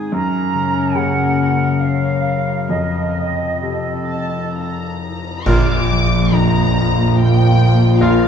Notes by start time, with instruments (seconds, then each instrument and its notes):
Already playing: harp G#2 D#3 D#4 G#4 C5, grand piano C4, clarinet D#4
0.12 grand piano F#2, harp F#2, clarinet C#4, oboe A#4, flute section A#5
0.54 harp C#3
0.95 grand piano C#3, harp A#3, flute section F#5
1.38 harp A#4
1.80 harp C#5, flute section F5
2.24 harp A#4
2.69 grand piano F2, harp F2, clarinet C4, flute section D#5
3.16 harp C3
3.62 grand piano C3, harp C4, oboe A4
4.07 harp A3, violin section A5
4.55 harp F5, violin section A#5
5.02 harp C5
5.46 grand piano A#1, double bass section A#1, timpani A#2, cello section A#2, harp A#2, french horn section F3 F4, viola section A#3 F4, clarinet F4, oboe A#4, violin section D6, concert bass drum, crash
5.91 harp F3
6.32 grand piano F2, harp D4, violin section A#5
6.75 harp A#4
7.17 harp F5, violin section G5
7.60 harp A#4
8.01 grand piano A#1, harp A#2, clarinet F4, oboe A#4, violin section F5